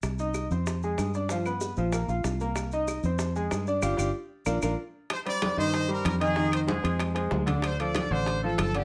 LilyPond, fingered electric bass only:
\new Staff \with { instrumentName = "Fingered electric bass" } { \clef bass \time 4/4 \key c \minor \tempo 4 = 190 c,4. f,4. g,4~ | g,4. bes,,4 bes,,8 c,4~ | c,4. f,4. g,4 | g,,8 g,,8 r4 bes,,8 bes,,8 r4 |
r4. g,4. f,4~ | f,4. f,4. d,4~ | d,4. a,,4. g,,4 | }